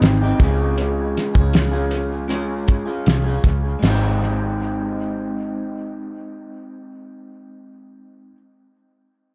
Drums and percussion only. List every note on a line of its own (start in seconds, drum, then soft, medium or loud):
0.02 snare loud
0.02 closed hi-hat medium
0.40 kick medium
0.40 closed hi-hat medium
0.78 closed hi-hat medium
1.17 snare soft
1.17 closed hi-hat medium
1.35 kick medium
1.53 snare medium
1.53 closed hi-hat medium
1.91 closed hi-hat medium
2.30 closed hi-hat medium
2.68 kick medium
2.68 closed hi-hat medium
3.06 snare loud
3.06 closed hi-hat medium
3.44 kick medium
3.44 closed hi-hat medium
3.82 snare medium
3.82 china medium